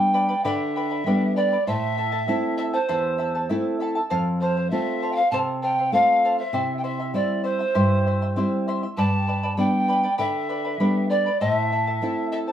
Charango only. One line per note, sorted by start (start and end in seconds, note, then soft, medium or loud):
0.00 0.13 B4 medium
0.00 0.14 D5 medium
0.00 0.12 G5 medium
0.00 0.14 B5 medium
0.14 0.29 B4 medium
0.14 0.28 D5 medium
0.14 0.30 G5 medium
0.14 0.28 B5 medium
0.29 0.44 B4 soft
0.29 0.44 D5 medium
0.29 0.44 B5 medium
0.45 0.75 G4 medium
0.45 0.75 B4 medium
0.45 0.76 D5 medium
0.45 0.75 G5 medium
0.45 0.76 B5 loud
0.76 0.91 B4 medium
0.76 0.90 D5 medium
0.76 0.91 G5 medium
0.76 0.90 B5 medium
0.91 1.06 B4 soft
0.91 1.06 D5 soft
0.91 1.06 B5 medium
1.06 1.36 B4 medium
1.06 1.36 D5 medium
1.06 1.35 G5 medium
1.06 1.37 B5 medium
1.37 1.52 B4 medium
1.37 1.52 D5 medium
1.37 1.52 G5 medium
1.37 1.51 B5 medium
1.53 1.68 B4 soft
1.53 1.68 D5 medium
1.53 1.67 B5 medium
1.67 1.97 E4 medium
1.67 1.97 A4 medium
1.67 1.98 C5 medium
1.67 1.96 E5 medium
1.67 1.98 A5 medium
1.97 2.12 E4 medium
1.97 2.12 A4 medium
1.97 2.13 E5 medium
1.97 2.11 A5 medium
2.12 2.27 E4 soft
2.12 2.27 A4 medium
2.12 2.28 A5 medium
2.28 2.57 E4 medium
2.28 2.58 A4 medium
2.28 2.57 E5 medium
2.28 2.58 A5 medium
2.58 2.74 E4 medium
2.58 2.73 A4 medium
2.58 2.73 E5 medium
2.58 2.72 A5 medium
2.73 2.88 E4 soft
2.73 2.88 A4 medium
2.73 2.88 A5 medium
2.89 3.18 E4 medium
2.89 3.18 A4 loud
2.89 3.19 C5 loud
2.89 3.17 E5 medium
2.89 3.19 A5 medium
3.18 3.34 E4 medium
3.18 3.34 A4 medium
3.18 3.34 E5 medium
3.18 3.34 A5 medium
3.35 3.49 E4 soft
3.35 3.49 A4 soft
3.35 3.50 A5 medium
3.49 3.80 E4 medium
3.49 3.80 A4 medium
3.49 3.79 E5 medium
3.49 3.81 A5 medium
3.80 3.96 E4 medium
3.80 3.95 A4 medium
3.80 3.95 E5 medium
3.80 3.94 A5 medium
3.95 4.10 E4 soft
3.95 4.09 A4 medium
3.95 4.10 A5 medium
4.10 4.40 A4 medium
4.10 4.41 C5 loud
4.10 4.41 F5 loud
4.41 4.56 A4 medium
4.41 4.56 C5 medium
4.41 4.56 F5 medium
4.57 4.72 C5 medium
4.57 4.71 F5 medium
4.72 5.01 A4 medium
4.72 5.02 C5 medium
5.02 5.17 A4 medium
5.02 5.17 C5 medium
5.02 5.16 F5 medium
5.17 5.33 C5 soft
5.17 5.32 F5 medium
5.33 5.61 A4 medium
5.33 5.62 C5 medium
5.33 5.63 F5 loud
5.62 5.77 A4 medium
5.62 5.78 C5 medium
5.62 5.78 F5 medium
5.79 5.94 C5 soft
5.79 5.93 F5 medium
5.94 6.23 A4 medium
5.94 6.24 C5 medium
5.94 6.24 F5 medium
6.24 6.39 A4 medium
6.24 6.39 C5 medium
6.24 6.37 F5 medium
6.38 6.53 C5 soft
6.38 6.53 F5 medium
6.54 6.83 E4 medium
6.54 6.84 G4 medium
6.54 6.83 C5 medium
6.54 6.83 E5 medium
6.54 6.84 C6 medium
6.84 6.99 E4 medium
6.84 6.99 C5 medium
6.84 6.98 E5 medium
6.84 6.98 C6 medium
7.00 7.14 E4 medium
7.00 7.14 E5 medium
7.00 7.14 C6 medium
7.14 7.43 E4 medium
7.14 7.42 C5 medium
7.14 7.43 E5 medium
7.14 7.44 C6 medium
7.44 7.59 E4 medium
7.44 7.59 C5 medium
7.44 7.59 E5 medium
7.44 7.58 C6 medium
7.59 7.74 E4 soft
7.59 7.74 E5 medium
7.59 7.74 C6 medium
7.75 8.05 E4 medium
7.75 8.05 G4 medium
7.75 8.05 C5 medium
7.75 8.05 E5 medium
7.75 8.06 C6 medium
8.06 8.21 E4 medium
8.06 8.21 C5 medium
8.06 8.21 E5 medium
8.06 8.21 C6 medium
8.22 8.36 E4 soft
8.22 8.37 E5 medium
8.22 8.36 C6 medium
8.37 8.67 E4 medium
8.37 8.67 C5 medium
8.37 8.67 E5 medium
8.37 8.67 C6 medium
8.68 8.82 E4 medium
8.68 8.82 C5 medium
8.68 8.82 E5 medium
8.68 8.82 C6 medium
8.83 8.98 E4 soft
8.83 8.98 E5 soft
8.83 8.97 C6 soft
8.98 9.27 G4 medium
8.98 9.27 B4 medium
8.98 9.28 D5 medium
8.98 9.26 G5 medium
8.98 9.28 B5 medium
9.28 9.43 B4 medium
9.28 9.42 D5 medium
9.28 9.42 G5 medium
9.28 9.42 B5 medium
9.43 9.56 B4 soft
9.43 9.57 D5 medium
9.43 9.57 B5 medium
9.57 9.87 B4 medium
9.57 9.88 D5 medium
9.57 9.87 G5 medium
9.57 9.88 B5 medium
9.88 10.03 B4 medium
9.88 10.03 D5 medium
9.88 10.03 G5 medium
9.88 10.02 B5 medium
10.03 10.17 B4 soft
10.03 10.17 D5 medium
10.03 10.18 B5 medium
10.18 10.48 G4 medium
10.18 10.48 B4 medium
10.18 10.49 D5 medium
10.18 10.48 G5 medium
10.18 10.49 B5 medium
10.49 10.64 B4 medium
10.49 10.64 D5 medium
10.49 10.64 G5 medium
10.49 10.63 B5 medium
10.65 10.79 B4 soft
10.65 10.79 D5 soft
10.65 10.79 B5 medium
10.80 11.10 B4 medium
10.80 11.10 D5 medium
10.80 11.09 G5 medium
10.80 11.10 B5 medium
11.11 11.25 B4 medium
11.11 11.25 D5 medium
11.11 11.25 G5 medium
11.11 11.25 B5 medium
11.26 11.41 B4 soft
11.26 11.41 D5 soft
11.26 11.40 B5 medium
11.41 11.71 E4 medium
11.41 11.71 A4 medium
11.41 11.71 C5 medium
11.41 11.71 E5 medium
11.41 11.71 A5 medium
11.72 11.86 E4 medium
11.72 11.86 A4 medium
11.72 11.86 E5 medium
11.72 11.86 A5 medium
11.87 12.02 E4 soft
11.87 12.02 A4 medium
11.87 12.01 A5 medium
12.03 12.32 E4 medium
12.03 12.32 A4 medium
12.03 12.31 E5 medium
12.03 12.32 A5 medium
12.32 12.47 E4 medium
12.32 12.47 A4 medium
12.32 12.47 E5 medium
12.32 12.47 A5 medium
12.48 12.52 A5 medium